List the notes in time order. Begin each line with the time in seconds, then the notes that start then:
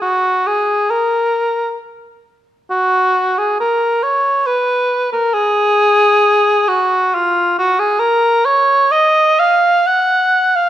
0.01 F#4
0.47 G#4
0.90 A#4
2.70 F#4
3.38 G#4
3.60 A#4
4.03 C#5
4.46 B4
5.12 A#4
5.33 G#4
6.68 F#4
7.14 F4
7.58 F#4
7.79 G#4
7.99 A#4
8.45 C#5
8.91 D#5
9.40 F5
9.87 F#5
10.56 F5